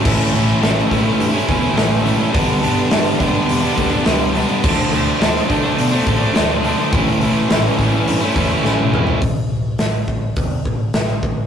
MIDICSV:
0, 0, Header, 1, 4, 480
1, 0, Start_track
1, 0, Tempo, 573066
1, 43, Time_signature, 4, 2, 24, 8
1, 9604, End_track
2, 0, Start_track
2, 0, Title_t, "Distorted electric guitar"
2, 0, Program_c, 0, 30
2, 31, Note_on_c, 0, 45, 97
2, 44, Note_on_c, 0, 52, 108
2, 49, Note_on_c, 0, 57, 101
2, 53, Note_on_c, 0, 61, 105
2, 58, Note_on_c, 0, 64, 109
2, 263, Note_off_c, 0, 52, 0
2, 273, Note_on_c, 0, 52, 76
2, 276, Note_off_c, 0, 57, 0
2, 283, Note_off_c, 0, 61, 0
2, 286, Note_on_c, 0, 57, 72
2, 290, Note_off_c, 0, 64, 0
2, 293, Note_on_c, 0, 61, 71
2, 300, Note_on_c, 0, 64, 80
2, 492, Note_off_c, 0, 45, 0
2, 502, Note_on_c, 0, 45, 95
2, 504, Note_off_c, 0, 52, 0
2, 506, Note_off_c, 0, 57, 0
2, 513, Note_off_c, 0, 61, 0
2, 514, Note_on_c, 0, 52, 93
2, 516, Note_on_c, 0, 57, 100
2, 518, Note_off_c, 0, 64, 0
2, 523, Note_on_c, 0, 61, 113
2, 528, Note_on_c, 0, 64, 106
2, 742, Note_off_c, 0, 52, 0
2, 751, Note_off_c, 0, 57, 0
2, 752, Note_on_c, 0, 52, 70
2, 760, Note_off_c, 0, 61, 0
2, 761, Note_on_c, 0, 57, 81
2, 766, Note_off_c, 0, 64, 0
2, 770, Note_on_c, 0, 61, 85
2, 776, Note_on_c, 0, 64, 84
2, 864, Note_off_c, 0, 64, 0
2, 874, Note_on_c, 0, 64, 74
2, 878, Note_off_c, 0, 61, 0
2, 888, Note_off_c, 0, 57, 0
2, 888, Note_on_c, 0, 61, 65
2, 898, Note_on_c, 0, 57, 64
2, 993, Note_off_c, 0, 45, 0
2, 1093, Note_off_c, 0, 64, 0
2, 1103, Note_on_c, 0, 64, 79
2, 1109, Note_off_c, 0, 61, 0
2, 1118, Note_off_c, 0, 52, 0
2, 1119, Note_on_c, 0, 61, 65
2, 1122, Note_off_c, 0, 57, 0
2, 1132, Note_on_c, 0, 57, 62
2, 1227, Note_off_c, 0, 57, 0
2, 1230, Note_on_c, 0, 52, 81
2, 1237, Note_off_c, 0, 61, 0
2, 1237, Note_on_c, 0, 57, 76
2, 1243, Note_off_c, 0, 64, 0
2, 1247, Note_on_c, 0, 61, 82
2, 1253, Note_on_c, 0, 64, 85
2, 1333, Note_off_c, 0, 64, 0
2, 1343, Note_on_c, 0, 64, 76
2, 1347, Note_off_c, 0, 61, 0
2, 1357, Note_on_c, 0, 61, 72
2, 1362, Note_off_c, 0, 57, 0
2, 1372, Note_on_c, 0, 57, 67
2, 1452, Note_off_c, 0, 52, 0
2, 1458, Note_on_c, 0, 45, 97
2, 1462, Note_on_c, 0, 52, 100
2, 1463, Note_off_c, 0, 57, 0
2, 1469, Note_off_c, 0, 61, 0
2, 1473, Note_on_c, 0, 57, 106
2, 1474, Note_off_c, 0, 64, 0
2, 1479, Note_on_c, 0, 61, 108
2, 1484, Note_on_c, 0, 64, 114
2, 1693, Note_off_c, 0, 52, 0
2, 1700, Note_off_c, 0, 57, 0
2, 1703, Note_on_c, 0, 52, 76
2, 1707, Note_off_c, 0, 61, 0
2, 1711, Note_on_c, 0, 57, 80
2, 1714, Note_off_c, 0, 64, 0
2, 1717, Note_on_c, 0, 61, 85
2, 1724, Note_on_c, 0, 64, 85
2, 1814, Note_off_c, 0, 64, 0
2, 1821, Note_off_c, 0, 61, 0
2, 1824, Note_on_c, 0, 64, 71
2, 1831, Note_on_c, 0, 61, 64
2, 1837, Note_off_c, 0, 57, 0
2, 1847, Note_on_c, 0, 57, 62
2, 1937, Note_off_c, 0, 45, 0
2, 1939, Note_off_c, 0, 52, 0
2, 1939, Note_off_c, 0, 64, 0
2, 1942, Note_on_c, 0, 43, 94
2, 1943, Note_off_c, 0, 61, 0
2, 1950, Note_on_c, 0, 50, 101
2, 1951, Note_off_c, 0, 57, 0
2, 1956, Note_on_c, 0, 55, 107
2, 1960, Note_on_c, 0, 59, 106
2, 1963, Note_on_c, 0, 62, 114
2, 2174, Note_off_c, 0, 50, 0
2, 2184, Note_on_c, 0, 50, 73
2, 2186, Note_off_c, 0, 55, 0
2, 2195, Note_off_c, 0, 59, 0
2, 2196, Note_on_c, 0, 55, 75
2, 2205, Note_on_c, 0, 59, 73
2, 2210, Note_off_c, 0, 62, 0
2, 2213, Note_on_c, 0, 62, 86
2, 2412, Note_off_c, 0, 43, 0
2, 2417, Note_off_c, 0, 50, 0
2, 2422, Note_on_c, 0, 43, 96
2, 2426, Note_off_c, 0, 55, 0
2, 2427, Note_on_c, 0, 50, 100
2, 2431, Note_off_c, 0, 59, 0
2, 2436, Note_on_c, 0, 55, 103
2, 2441, Note_on_c, 0, 59, 103
2, 2445, Note_off_c, 0, 62, 0
2, 2448, Note_on_c, 0, 62, 113
2, 2651, Note_off_c, 0, 50, 0
2, 2661, Note_off_c, 0, 55, 0
2, 2661, Note_on_c, 0, 50, 81
2, 2668, Note_off_c, 0, 59, 0
2, 2671, Note_on_c, 0, 55, 77
2, 2678, Note_on_c, 0, 59, 88
2, 2680, Note_off_c, 0, 62, 0
2, 2683, Note_on_c, 0, 62, 94
2, 2776, Note_off_c, 0, 62, 0
2, 2786, Note_on_c, 0, 62, 68
2, 2787, Note_off_c, 0, 59, 0
2, 2797, Note_on_c, 0, 59, 63
2, 2798, Note_off_c, 0, 55, 0
2, 2808, Note_on_c, 0, 55, 62
2, 2913, Note_off_c, 0, 43, 0
2, 3009, Note_off_c, 0, 62, 0
2, 3019, Note_on_c, 0, 62, 80
2, 3022, Note_off_c, 0, 59, 0
2, 3032, Note_off_c, 0, 50, 0
2, 3033, Note_on_c, 0, 59, 62
2, 3034, Note_off_c, 0, 55, 0
2, 3044, Note_on_c, 0, 55, 62
2, 3138, Note_off_c, 0, 55, 0
2, 3138, Note_on_c, 0, 50, 90
2, 3146, Note_off_c, 0, 59, 0
2, 3148, Note_on_c, 0, 55, 78
2, 3152, Note_off_c, 0, 62, 0
2, 3156, Note_on_c, 0, 59, 81
2, 3162, Note_on_c, 0, 62, 88
2, 3256, Note_off_c, 0, 62, 0
2, 3266, Note_on_c, 0, 62, 76
2, 3267, Note_off_c, 0, 59, 0
2, 3277, Note_on_c, 0, 59, 68
2, 3281, Note_off_c, 0, 55, 0
2, 3291, Note_on_c, 0, 55, 64
2, 3378, Note_off_c, 0, 50, 0
2, 3382, Note_on_c, 0, 43, 103
2, 3387, Note_off_c, 0, 55, 0
2, 3388, Note_on_c, 0, 50, 103
2, 3390, Note_off_c, 0, 59, 0
2, 3395, Note_off_c, 0, 62, 0
2, 3397, Note_on_c, 0, 55, 117
2, 3400, Note_on_c, 0, 59, 101
2, 3405, Note_on_c, 0, 62, 117
2, 3614, Note_off_c, 0, 50, 0
2, 3624, Note_off_c, 0, 55, 0
2, 3624, Note_on_c, 0, 50, 70
2, 3627, Note_off_c, 0, 59, 0
2, 3633, Note_off_c, 0, 62, 0
2, 3634, Note_on_c, 0, 55, 73
2, 3637, Note_on_c, 0, 59, 76
2, 3643, Note_on_c, 0, 62, 84
2, 3738, Note_off_c, 0, 62, 0
2, 3748, Note_on_c, 0, 62, 75
2, 3752, Note_off_c, 0, 59, 0
2, 3762, Note_on_c, 0, 59, 71
2, 3763, Note_off_c, 0, 55, 0
2, 3773, Note_on_c, 0, 55, 66
2, 3858, Note_off_c, 0, 43, 0
2, 3859, Note_off_c, 0, 50, 0
2, 3861, Note_off_c, 0, 62, 0
2, 3868, Note_off_c, 0, 59, 0
2, 3873, Note_on_c, 0, 50, 92
2, 3874, Note_off_c, 0, 55, 0
2, 3881, Note_on_c, 0, 53, 92
2, 3889, Note_on_c, 0, 57, 102
2, 3895, Note_on_c, 0, 62, 102
2, 4099, Note_off_c, 0, 50, 0
2, 4109, Note_on_c, 0, 50, 71
2, 4115, Note_off_c, 0, 53, 0
2, 4125, Note_on_c, 0, 53, 73
2, 4128, Note_off_c, 0, 57, 0
2, 4131, Note_off_c, 0, 62, 0
2, 4131, Note_on_c, 0, 57, 72
2, 4141, Note_on_c, 0, 62, 88
2, 4344, Note_off_c, 0, 50, 0
2, 4352, Note_off_c, 0, 53, 0
2, 4354, Note_on_c, 0, 50, 99
2, 4362, Note_on_c, 0, 53, 100
2, 4368, Note_off_c, 0, 62, 0
2, 4369, Note_off_c, 0, 57, 0
2, 4372, Note_on_c, 0, 57, 107
2, 4378, Note_on_c, 0, 62, 112
2, 4583, Note_off_c, 0, 50, 0
2, 4588, Note_off_c, 0, 53, 0
2, 4593, Note_on_c, 0, 50, 75
2, 4598, Note_on_c, 0, 53, 90
2, 4605, Note_off_c, 0, 57, 0
2, 4606, Note_off_c, 0, 62, 0
2, 4608, Note_on_c, 0, 57, 87
2, 4616, Note_on_c, 0, 62, 95
2, 4701, Note_off_c, 0, 62, 0
2, 4711, Note_on_c, 0, 62, 68
2, 4723, Note_off_c, 0, 53, 0
2, 4724, Note_off_c, 0, 57, 0
2, 4727, Note_on_c, 0, 57, 62
2, 4733, Note_on_c, 0, 53, 60
2, 4941, Note_off_c, 0, 62, 0
2, 4951, Note_on_c, 0, 62, 68
2, 4958, Note_off_c, 0, 50, 0
2, 4959, Note_off_c, 0, 57, 0
2, 4962, Note_on_c, 0, 57, 75
2, 4968, Note_off_c, 0, 53, 0
2, 4978, Note_on_c, 0, 53, 67
2, 5069, Note_off_c, 0, 53, 0
2, 5072, Note_on_c, 0, 50, 70
2, 5079, Note_on_c, 0, 53, 82
2, 5085, Note_off_c, 0, 57, 0
2, 5088, Note_off_c, 0, 62, 0
2, 5089, Note_on_c, 0, 57, 91
2, 5098, Note_on_c, 0, 62, 89
2, 5174, Note_off_c, 0, 62, 0
2, 5184, Note_on_c, 0, 62, 78
2, 5190, Note_off_c, 0, 57, 0
2, 5193, Note_on_c, 0, 57, 78
2, 5197, Note_off_c, 0, 53, 0
2, 5208, Note_on_c, 0, 53, 69
2, 5295, Note_off_c, 0, 50, 0
2, 5305, Note_on_c, 0, 50, 100
2, 5306, Note_off_c, 0, 53, 0
2, 5316, Note_on_c, 0, 53, 102
2, 5317, Note_off_c, 0, 57, 0
2, 5320, Note_on_c, 0, 57, 107
2, 5321, Note_off_c, 0, 62, 0
2, 5331, Note_on_c, 0, 62, 118
2, 5545, Note_off_c, 0, 50, 0
2, 5549, Note_off_c, 0, 53, 0
2, 5555, Note_on_c, 0, 50, 79
2, 5559, Note_on_c, 0, 53, 83
2, 5564, Note_off_c, 0, 57, 0
2, 5565, Note_off_c, 0, 62, 0
2, 5567, Note_on_c, 0, 57, 90
2, 5575, Note_on_c, 0, 62, 87
2, 5661, Note_off_c, 0, 62, 0
2, 5671, Note_on_c, 0, 62, 62
2, 5678, Note_off_c, 0, 57, 0
2, 5681, Note_on_c, 0, 57, 60
2, 5682, Note_off_c, 0, 53, 0
2, 5692, Note_on_c, 0, 53, 52
2, 5783, Note_off_c, 0, 62, 0
2, 5784, Note_off_c, 0, 50, 0
2, 5786, Note_on_c, 0, 45, 101
2, 5791, Note_on_c, 0, 52, 96
2, 5793, Note_off_c, 0, 53, 0
2, 5802, Note_off_c, 0, 57, 0
2, 5802, Note_on_c, 0, 57, 103
2, 5806, Note_on_c, 0, 61, 103
2, 5810, Note_on_c, 0, 64, 116
2, 6024, Note_off_c, 0, 52, 0
2, 6033, Note_off_c, 0, 57, 0
2, 6034, Note_on_c, 0, 52, 72
2, 6041, Note_off_c, 0, 61, 0
2, 6043, Note_on_c, 0, 57, 79
2, 6047, Note_off_c, 0, 64, 0
2, 6051, Note_on_c, 0, 61, 71
2, 6057, Note_on_c, 0, 64, 82
2, 6256, Note_off_c, 0, 45, 0
2, 6266, Note_off_c, 0, 52, 0
2, 6266, Note_on_c, 0, 45, 98
2, 6269, Note_off_c, 0, 57, 0
2, 6276, Note_on_c, 0, 52, 112
2, 6277, Note_off_c, 0, 61, 0
2, 6279, Note_on_c, 0, 57, 95
2, 6284, Note_off_c, 0, 64, 0
2, 6287, Note_on_c, 0, 61, 104
2, 6294, Note_on_c, 0, 64, 110
2, 6499, Note_off_c, 0, 52, 0
2, 6508, Note_off_c, 0, 57, 0
2, 6509, Note_on_c, 0, 52, 85
2, 6515, Note_off_c, 0, 61, 0
2, 6518, Note_on_c, 0, 57, 77
2, 6525, Note_off_c, 0, 64, 0
2, 6525, Note_on_c, 0, 61, 87
2, 6535, Note_on_c, 0, 64, 78
2, 6621, Note_off_c, 0, 64, 0
2, 6631, Note_on_c, 0, 64, 68
2, 6636, Note_off_c, 0, 61, 0
2, 6645, Note_off_c, 0, 57, 0
2, 6646, Note_on_c, 0, 61, 69
2, 6655, Note_on_c, 0, 57, 56
2, 6754, Note_off_c, 0, 45, 0
2, 6860, Note_off_c, 0, 64, 0
2, 6870, Note_on_c, 0, 64, 68
2, 6873, Note_off_c, 0, 61, 0
2, 6876, Note_off_c, 0, 52, 0
2, 6883, Note_on_c, 0, 61, 67
2, 6884, Note_off_c, 0, 57, 0
2, 6894, Note_on_c, 0, 57, 60
2, 6984, Note_on_c, 0, 52, 76
2, 6986, Note_off_c, 0, 57, 0
2, 6991, Note_off_c, 0, 61, 0
2, 6996, Note_on_c, 0, 57, 77
2, 6998, Note_off_c, 0, 64, 0
2, 7001, Note_on_c, 0, 61, 83
2, 7008, Note_on_c, 0, 64, 81
2, 7105, Note_off_c, 0, 64, 0
2, 7115, Note_off_c, 0, 61, 0
2, 7115, Note_on_c, 0, 64, 81
2, 7125, Note_on_c, 0, 61, 62
2, 7129, Note_off_c, 0, 57, 0
2, 7139, Note_on_c, 0, 57, 61
2, 7230, Note_off_c, 0, 52, 0
2, 7231, Note_on_c, 0, 45, 97
2, 7234, Note_off_c, 0, 57, 0
2, 7239, Note_off_c, 0, 61, 0
2, 7240, Note_on_c, 0, 52, 89
2, 7244, Note_on_c, 0, 57, 92
2, 7248, Note_off_c, 0, 64, 0
2, 7249, Note_on_c, 0, 61, 112
2, 7258, Note_on_c, 0, 64, 112
2, 7466, Note_off_c, 0, 52, 0
2, 7476, Note_off_c, 0, 57, 0
2, 7476, Note_on_c, 0, 52, 73
2, 7482, Note_off_c, 0, 61, 0
2, 7486, Note_on_c, 0, 57, 72
2, 7488, Note_off_c, 0, 64, 0
2, 7492, Note_on_c, 0, 61, 81
2, 7498, Note_on_c, 0, 64, 87
2, 7580, Note_off_c, 0, 64, 0
2, 7590, Note_on_c, 0, 64, 67
2, 7596, Note_off_c, 0, 61, 0
2, 7603, Note_off_c, 0, 57, 0
2, 7606, Note_on_c, 0, 61, 63
2, 7613, Note_on_c, 0, 57, 56
2, 7702, Note_off_c, 0, 45, 0
2, 7702, Note_off_c, 0, 64, 0
2, 7705, Note_off_c, 0, 52, 0
2, 7710, Note_off_c, 0, 61, 0
2, 7713, Note_off_c, 0, 57, 0
2, 9604, End_track
3, 0, Start_track
3, 0, Title_t, "Picked electric bass"
3, 0, Program_c, 1, 34
3, 44, Note_on_c, 1, 33, 90
3, 192, Note_off_c, 1, 33, 0
3, 270, Note_on_c, 1, 33, 102
3, 423, Note_off_c, 1, 33, 0
3, 512, Note_on_c, 1, 33, 94
3, 664, Note_off_c, 1, 33, 0
3, 762, Note_on_c, 1, 45, 89
3, 911, Note_off_c, 1, 45, 0
3, 990, Note_on_c, 1, 43, 93
3, 1143, Note_off_c, 1, 43, 0
3, 1247, Note_on_c, 1, 40, 82
3, 1394, Note_off_c, 1, 40, 0
3, 1475, Note_on_c, 1, 33, 100
3, 1775, Note_off_c, 1, 33, 0
3, 1966, Note_on_c, 1, 31, 92
3, 2114, Note_off_c, 1, 31, 0
3, 2201, Note_on_c, 1, 31, 108
3, 2350, Note_off_c, 1, 31, 0
3, 2445, Note_on_c, 1, 31, 98
3, 2593, Note_off_c, 1, 31, 0
3, 2683, Note_on_c, 1, 43, 91
3, 2832, Note_off_c, 1, 43, 0
3, 2931, Note_on_c, 1, 40, 97
3, 3077, Note_off_c, 1, 40, 0
3, 3167, Note_on_c, 1, 38, 87
3, 3314, Note_off_c, 1, 38, 0
3, 3404, Note_on_c, 1, 37, 99
3, 3701, Note_off_c, 1, 37, 0
3, 3885, Note_on_c, 1, 38, 103
3, 4033, Note_off_c, 1, 38, 0
3, 4117, Note_on_c, 1, 38, 96
3, 4267, Note_off_c, 1, 38, 0
3, 4358, Note_on_c, 1, 38, 103
3, 4508, Note_off_c, 1, 38, 0
3, 4607, Note_on_c, 1, 50, 97
3, 4754, Note_off_c, 1, 50, 0
3, 4841, Note_on_c, 1, 47, 88
3, 4990, Note_off_c, 1, 47, 0
3, 5083, Note_on_c, 1, 45, 95
3, 5231, Note_off_c, 1, 45, 0
3, 5326, Note_on_c, 1, 38, 96
3, 5622, Note_off_c, 1, 38, 0
3, 5803, Note_on_c, 1, 33, 101
3, 5952, Note_off_c, 1, 33, 0
3, 6033, Note_on_c, 1, 33, 96
3, 6185, Note_off_c, 1, 33, 0
3, 6275, Note_on_c, 1, 33, 93
3, 6426, Note_off_c, 1, 33, 0
3, 6524, Note_on_c, 1, 45, 93
3, 6672, Note_off_c, 1, 45, 0
3, 6754, Note_on_c, 1, 43, 86
3, 6905, Note_off_c, 1, 43, 0
3, 7001, Note_on_c, 1, 40, 85
3, 7150, Note_off_c, 1, 40, 0
3, 7239, Note_on_c, 1, 33, 104
3, 7537, Note_off_c, 1, 33, 0
3, 7721, Note_on_c, 1, 33, 86
3, 7908, Note_off_c, 1, 33, 0
3, 7948, Note_on_c, 1, 33, 83
3, 8141, Note_off_c, 1, 33, 0
3, 8198, Note_on_c, 1, 33, 82
3, 8386, Note_off_c, 1, 33, 0
3, 8442, Note_on_c, 1, 33, 82
3, 8629, Note_off_c, 1, 33, 0
3, 8686, Note_on_c, 1, 28, 81
3, 8872, Note_off_c, 1, 28, 0
3, 8924, Note_on_c, 1, 33, 77
3, 9111, Note_off_c, 1, 33, 0
3, 9167, Note_on_c, 1, 33, 91
3, 9353, Note_off_c, 1, 33, 0
3, 9405, Note_on_c, 1, 33, 81
3, 9592, Note_off_c, 1, 33, 0
3, 9604, End_track
4, 0, Start_track
4, 0, Title_t, "Drums"
4, 44, Note_on_c, 9, 36, 125
4, 45, Note_on_c, 9, 49, 112
4, 128, Note_off_c, 9, 36, 0
4, 128, Note_off_c, 9, 49, 0
4, 285, Note_on_c, 9, 46, 63
4, 369, Note_off_c, 9, 46, 0
4, 527, Note_on_c, 9, 46, 87
4, 532, Note_on_c, 9, 38, 117
4, 611, Note_off_c, 9, 46, 0
4, 615, Note_off_c, 9, 38, 0
4, 658, Note_on_c, 9, 38, 34
4, 742, Note_off_c, 9, 38, 0
4, 765, Note_on_c, 9, 36, 80
4, 767, Note_on_c, 9, 46, 63
4, 771, Note_on_c, 9, 38, 32
4, 849, Note_off_c, 9, 36, 0
4, 850, Note_off_c, 9, 46, 0
4, 855, Note_off_c, 9, 38, 0
4, 1006, Note_on_c, 9, 46, 84
4, 1089, Note_off_c, 9, 46, 0
4, 1243, Note_on_c, 9, 46, 62
4, 1245, Note_on_c, 9, 36, 88
4, 1327, Note_off_c, 9, 46, 0
4, 1329, Note_off_c, 9, 36, 0
4, 1484, Note_on_c, 9, 46, 74
4, 1488, Note_on_c, 9, 38, 104
4, 1568, Note_off_c, 9, 46, 0
4, 1572, Note_off_c, 9, 38, 0
4, 1724, Note_on_c, 9, 46, 61
4, 1808, Note_off_c, 9, 46, 0
4, 1963, Note_on_c, 9, 46, 90
4, 1965, Note_on_c, 9, 36, 124
4, 2047, Note_off_c, 9, 46, 0
4, 2049, Note_off_c, 9, 36, 0
4, 2207, Note_on_c, 9, 46, 62
4, 2291, Note_off_c, 9, 46, 0
4, 2438, Note_on_c, 9, 46, 92
4, 2442, Note_on_c, 9, 38, 114
4, 2521, Note_off_c, 9, 46, 0
4, 2526, Note_off_c, 9, 38, 0
4, 2564, Note_on_c, 9, 38, 34
4, 2647, Note_off_c, 9, 38, 0
4, 2678, Note_on_c, 9, 46, 62
4, 2682, Note_on_c, 9, 36, 77
4, 2762, Note_off_c, 9, 46, 0
4, 2766, Note_off_c, 9, 36, 0
4, 2923, Note_on_c, 9, 46, 95
4, 3007, Note_off_c, 9, 46, 0
4, 3160, Note_on_c, 9, 46, 67
4, 3164, Note_on_c, 9, 36, 82
4, 3243, Note_off_c, 9, 46, 0
4, 3248, Note_off_c, 9, 36, 0
4, 3398, Note_on_c, 9, 46, 82
4, 3402, Note_on_c, 9, 38, 108
4, 3482, Note_off_c, 9, 46, 0
4, 3486, Note_off_c, 9, 38, 0
4, 3645, Note_on_c, 9, 46, 62
4, 3728, Note_off_c, 9, 46, 0
4, 3886, Note_on_c, 9, 36, 127
4, 3888, Note_on_c, 9, 57, 115
4, 3969, Note_off_c, 9, 36, 0
4, 3972, Note_off_c, 9, 57, 0
4, 4125, Note_on_c, 9, 46, 61
4, 4209, Note_off_c, 9, 46, 0
4, 4367, Note_on_c, 9, 46, 90
4, 4371, Note_on_c, 9, 38, 117
4, 4451, Note_off_c, 9, 46, 0
4, 4455, Note_off_c, 9, 38, 0
4, 4493, Note_on_c, 9, 38, 30
4, 4577, Note_off_c, 9, 38, 0
4, 4605, Note_on_c, 9, 36, 81
4, 4607, Note_on_c, 9, 46, 61
4, 4689, Note_off_c, 9, 36, 0
4, 4691, Note_off_c, 9, 46, 0
4, 4845, Note_on_c, 9, 46, 90
4, 4929, Note_off_c, 9, 46, 0
4, 5079, Note_on_c, 9, 46, 65
4, 5082, Note_on_c, 9, 36, 93
4, 5163, Note_off_c, 9, 46, 0
4, 5166, Note_off_c, 9, 36, 0
4, 5322, Note_on_c, 9, 46, 77
4, 5326, Note_on_c, 9, 38, 109
4, 5406, Note_off_c, 9, 46, 0
4, 5410, Note_off_c, 9, 38, 0
4, 5564, Note_on_c, 9, 46, 58
4, 5647, Note_off_c, 9, 46, 0
4, 5802, Note_on_c, 9, 36, 124
4, 5804, Note_on_c, 9, 46, 87
4, 5886, Note_off_c, 9, 36, 0
4, 5888, Note_off_c, 9, 46, 0
4, 6042, Note_on_c, 9, 46, 58
4, 6126, Note_off_c, 9, 46, 0
4, 6284, Note_on_c, 9, 46, 87
4, 6288, Note_on_c, 9, 38, 118
4, 6367, Note_off_c, 9, 46, 0
4, 6371, Note_off_c, 9, 38, 0
4, 6522, Note_on_c, 9, 36, 74
4, 6525, Note_on_c, 9, 46, 52
4, 6530, Note_on_c, 9, 38, 32
4, 6606, Note_off_c, 9, 36, 0
4, 6609, Note_off_c, 9, 46, 0
4, 6613, Note_off_c, 9, 38, 0
4, 6764, Note_on_c, 9, 46, 89
4, 6848, Note_off_c, 9, 46, 0
4, 7001, Note_on_c, 9, 36, 88
4, 7003, Note_on_c, 9, 46, 67
4, 7085, Note_off_c, 9, 36, 0
4, 7086, Note_off_c, 9, 46, 0
4, 7243, Note_on_c, 9, 38, 62
4, 7327, Note_off_c, 9, 38, 0
4, 7360, Note_on_c, 9, 48, 73
4, 7444, Note_off_c, 9, 48, 0
4, 7484, Note_on_c, 9, 45, 96
4, 7568, Note_off_c, 9, 45, 0
4, 7596, Note_on_c, 9, 43, 95
4, 7680, Note_off_c, 9, 43, 0
4, 7718, Note_on_c, 9, 46, 58
4, 7721, Note_on_c, 9, 36, 116
4, 7801, Note_off_c, 9, 46, 0
4, 7805, Note_off_c, 9, 36, 0
4, 8196, Note_on_c, 9, 46, 53
4, 8200, Note_on_c, 9, 38, 104
4, 8280, Note_off_c, 9, 46, 0
4, 8284, Note_off_c, 9, 38, 0
4, 8442, Note_on_c, 9, 36, 72
4, 8526, Note_off_c, 9, 36, 0
4, 8679, Note_on_c, 9, 46, 59
4, 8683, Note_on_c, 9, 36, 102
4, 8762, Note_off_c, 9, 46, 0
4, 8767, Note_off_c, 9, 36, 0
4, 8924, Note_on_c, 9, 36, 76
4, 9008, Note_off_c, 9, 36, 0
4, 9160, Note_on_c, 9, 46, 49
4, 9164, Note_on_c, 9, 38, 108
4, 9243, Note_off_c, 9, 46, 0
4, 9248, Note_off_c, 9, 38, 0
4, 9405, Note_on_c, 9, 36, 83
4, 9489, Note_off_c, 9, 36, 0
4, 9604, End_track
0, 0, End_of_file